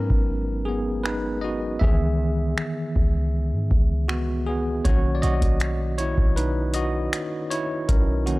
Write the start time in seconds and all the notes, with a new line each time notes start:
Already playing: F#3 G#3 B3 C#4 D#4 A#4 B4
0.10 G#1, kick
0.65 B3 G#4
1.04 D#4 B4, finger snap
1.41 F#4 D#5
1.79 C#2 D#3 E3 B3 G#4 E5, kick
2.58 finger snap
2.96 C#2, kick
3.52 G#2
3.71 C#2, kick
4.08 B3 F#4, finger snap
4.46 B3 G#4
4.85 B1 D#3 A#3 C#4 F#4 C#5, kick, closed hi-hat
5.15 D5
5.22 B1 F#4 D#5, closed hi-hat
5.42 B1, kick, closed hi-hat
5.60 finger snap, closed hi-hat
5.98 E4 C#5, closed hi-hat
6.18 B1, kick
6.36 D#4 B4, closed hi-hat
6.74 F#4 D#5, closed hi-hat
7.13 finger snap, closed hi-hat
7.51 E4 C#5, closed hi-hat
7.89 B1 C#4 A#4, kick, closed hi-hat
8.26 D#3 A#3 C#4 F#4, closed hi-hat